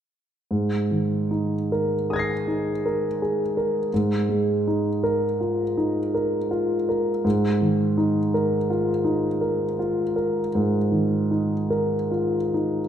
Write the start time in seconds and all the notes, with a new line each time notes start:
0.51 G#2
0.91 D#3
1.31 D#4
1.72 A#4
2.10 G#4 D#6 G#6
2.16 A#6 C7
2.48 D#4
2.86 A#4
3.22 G#4
3.57 A#4
3.94 G#2
4.29 G#3
4.68 D#4
5.03 A#4
5.41 F4
5.77 D#4
6.14 A#4
6.51 F4
6.89 A#4
7.25 G#2
7.62 D#3
7.97 D#4
8.34 A#4
8.70 F4
9.05 D#4
9.41 A#4
9.79 F4
10.16 A#4
10.55 G#2
10.92 D#3
11.31 D#4
11.70 A#4
12.11 F4
12.54 D#4